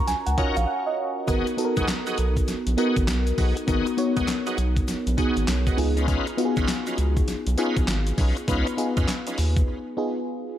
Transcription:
Already playing: C#4 F4 F#4 A#4 A#5 C#6
0.07 C#2 G#5, snare, closed hi-hat, tambourine, shaker
0.26 C#2 F#5, closed hi-hat, shaker
0.37 C#4 D#4 F4 F#4 A#4 C#5, kick, closed hi-hat, tambourine
0.56 A#1 F5, closed hi-hat, shaker
0.68 F#5
0.86 D#5
1.27 G#1 B3 D#4 F#4 G#4 A#4, kick, closed hi-hat, tambourine, shaker
1.47 closed hi-hat, shaker
1.57 B3 D#4 F#4 A4, closed hi-hat, tambourine
1.65 A#4
1.76 C#2 B3 D#4 F#4 G#4, kick, closed hi-hat, shaker
1.88 snare, clap, closed hi-hat, tambourine, shaker
2.06 B3 D#4 F#4 G#4, closed hi-hat, shaker
2.18 B1, closed hi-hat, shaker
2.37 kick, closed hi-hat, shaker
2.48 A#1, snare, closed hi-hat, tambourine, shaker
2.67 A#1, closed hi-hat, shaker
2.77 B3 D#4 F#4 G#4 A#4, closed hi-hat, tambourine
2.97 G#1, kick, closed hi-hat, shaker
3.08 B1, snare, clap, closed hi-hat, tambourine, shaker
3.27 closed hi-hat, shaker
3.38 B1 B3 D#4 F#4 G#4, kick, open hi-hat, tambourine
3.57 closed hi-hat, shaker
3.67 G#1 B3 D#4 F#4 G#4 A#4, kick, closed hi-hat, tambourine, shaker
3.87 closed hi-hat, shaker
3.97 B3 D#4 F#4 C#5, closed hi-hat, tambourine
4.16 C#2 B3 D#4 F#4 G#4, kick, closed hi-hat, shaker
4.28 snare, clap, closed hi-hat, tambourine, shaker
4.46 B3 D#4 F#4 G#4, closed hi-hat, shaker
4.58 B1, closed hi-hat, shaker
4.77 kick, closed hi-hat, shaker
4.88 A#1, snare, closed hi-hat, tambourine, shaker
5.07 A#1, closed hi-hat, shaker
5.17 B3 D#4 F#4 G#4, kick, closed hi-hat, tambourine
5.36 G#1, closed hi-hat, shaker
5.48 B1, snare, clap, closed hi-hat, tambourine, shaker
5.66 B3 D#4 F#4 G#4, kick, closed hi-hat, shaker
5.77 C#2 B3 D#4 F4 G#4, open hi-hat, tambourine
5.97 C#4 D#4 F4 B4, closed hi-hat, shaker
6.08 C#4 D#4 F4 B4, kick, closed hi-hat, tambourine, shaker
6.27 closed hi-hat, shaker
6.37 B3 D#4 F4 F#4, closed hi-hat, tambourine
6.45 G#4
6.56 G#1 C#4 D#4 F4 B4, kick, closed hi-hat, shaker
6.68 snare, clap, closed hi-hat, tambourine, shaker
6.87 C#4 D#4 F4 B4, closed hi-hat, shaker
6.98 C#2, closed hi-hat, shaker
7.17 kick, closed hi-hat, shaker
7.28 B1, snare, closed hi-hat, tambourine, shaker
7.47 B1, closed hi-hat, shaker
7.58 B3 C#4 D#4 F4 G#4 B4, closed hi-hat, tambourine
7.77 A#1, kick, closed hi-hat, shaker
7.88 G#1, snare, clap, closed hi-hat, tambourine, shaker
8.07 closed hi-hat, shaker
8.18 B1 C#4 D#4 F4 B4, kick, open hi-hat, tambourine
8.37 closed hi-hat, shaker
8.48 C#2 B3 C#4 D#4 F4 B4, kick, closed hi-hat, tambourine, shaker
8.67 closed hi-hat, shaker
8.77 B3 D#4 F4 G#4, closed hi-hat, tambourine, shaker
8.97 F2 C#4 D#4 F4 B4, kick, closed hi-hat, shaker
9.08 snare, clap, closed hi-hat, tambourine, shaker
9.27 C#4 D#4 F4 B4, closed hi-hat, shaker
9.38 D#2, open hi-hat, shaker
9.57 kick, closed hi-hat, shaker
9.97 B3 D#4 F4 G#4

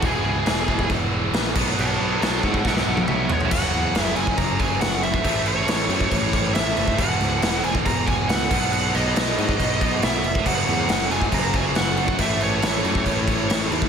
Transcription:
0.02 E1 E2 B2 E3 G#4, kick, crash
0.25 C#2
0.46 E1 E2 B2 E3, snare, crash
0.68 E1 E2 B2 E3, kick
0.79 kick
0.90 E1 E2 B2 E3, kick, crash
1.12 E1
1.33 A#1 E2 B2 E3, snare, crash
1.55 B1 B2 F#3 B3, kick, crash
1.68 snare
1.76 B1 B2 F#3 B3, crash
1.80 C#5 A5
1.99 B1 C#5 A5
2.20 B1 B2 F#3 B3 C#5 A5, snare, crash
2.42 G#2 B2 F#3 B3 A4 F#5, kick
2.54 kick
2.65 B1 B2 F#3 B3 A4 F#5, kick, snare
2.77 snare
2.87 B1 A4 F#5
2.97 high tom
3.08 B1 B2 F#3 B3 A4 C#5 E5, mid tom
3.30 B1 B2 F#3 B3 C#5, floor tom
3.41 floor tom
3.51 F#1 F#2 C#3 F#3 F#5, kick, crash
3.73 E2, crash
3.95 F#1, snare, crash
4.02 E5
4.16 F#1 F#2 C#3 F#3 G#5, crash
4.27 kick
4.37 F#1 A#5, kick, crash
4.59 F#1 G#5, kick, crash
4.81 F#1 F#5, snare, crash
5.03 E5, crash
5.14 kick
5.25 A1 A2 E3 A3, kick, crash
5.46 A1 C#5, crash
5.67 A1, snare, crash
5.88 F#2 A2 E3 A3, crash
6.01 kick
6.11 A1, kick, crash
6.33 A1, kick, crash
6.54 A1 E5, snare, crash
6.76 F#1, crash
6.88 kick
6.98 E1 E2 B2 E3 F#5, kick, crash
7.19 C#2, snare, crash
7.42 E1, snare, crash
7.63 E1 E2 B2 E3 G#5, crash
7.75 kick
7.86 E1 A#5, kick, crash
8.06 E1 G#5, kick, crash
8.29 C#2 F#5, snare, crash
8.51 B1 B2 F#3 B3, kick, crash
8.72 B1 F#5, crash
8.95 B1 D#5, snare, crash
9.15 B1 B2 F#3 B3, snare, crash
9.38 G#2, crash
9.49 kick
9.60 B1, kick, crash
9.81 B1, kick, crash
10.02 B1 E5, snare, crash
10.24 F1, crash
10.35 kick
10.46 F#1 F#2 C#3 F#3 F#5, kick, crash
10.68 E2, snare, crash
10.89 F#1 F#2 C#3 F#3, snare, crash
11.10 F#1 F#2 C#3 F#3 G#5, crash
11.22 kick
11.32 F#1 F#2 C#3 F#3 A#5, kick, crash
11.53 F#1 G#5, kick, crash
11.75 F#1 F#2 C#3 F#3 F#5, snare, crash
11.97 F#2 C#3 F#3, crash
12.08 kick
12.18 A1 A2 E3 A3 E5, kick, crash
12.41 A1 C#5, snare, crash
12.62 A1 A2 E3 A3, snare, crash
12.84 F#2 A2 E3 A3, crash
12.95 kick
13.05 A1 A2 E3 A3, kick, crash
13.27 A1, kick, crash
13.49 A1 A2 E3 A3, snare, crash
13.70 D#2 A2 E3 A3, crash
13.82 kick

